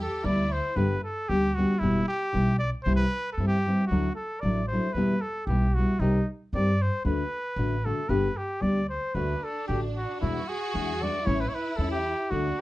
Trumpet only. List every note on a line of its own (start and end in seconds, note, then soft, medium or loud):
0.02 0.27 A4 medium
0.25 0.54 D5 medium
0.53 0.78 C5 medium
0.76 1.04 B4 medium
1.04 1.30 A4 medium
1.29 1.56 G4 medium
1.55 1.81 F#4 medium
1.79 2.08 E4 medium
2.08 2.58 G4 medium
2.59 2.70 D5 medium
2.83 2.95 C5 medium
2.96 3.32 B4 loud
3.33 3.47 A4 medium
3.47 3.85 G4 medium
3.87 4.15 F#4 medium
4.16 4.42 A4 medium
4.40 4.67 D5 medium
4.68 4.94 C5 medium
4.93 5.23 B4 medium
5.22 5.46 A4 medium
5.46 5.76 G4 medium
5.74 6.02 F#4 medium
6.00 6.29 D#4 medium
6.55 6.83 D5 medium
6.82 7.05 C5 medium
7.06 7.87 B4 medium
7.85 8.11 A4 medium
8.09 8.39 B4 medium
8.37 8.64 G4 medium
8.62 8.89 D5 medium
8.90 9.16 C5 medium
9.15 9.45 B4 medium
9.44 9.67 A4 medium
9.68 9.81 G4 medium
9.97 10.20 F#4 medium
10.21 10.50 E4 medium
10.49 11.04 G#4 medium
11.03 11.28 D5 medium
11.26 11.42 C#5 medium
11.41 11.50 B4 medium
11.49 11.56 C#5 medium
11.55 11.78 B4 medium
11.77 11.91 A4 medium
11.92 12.32 G4 medium
12.31 12.61 F#4 medium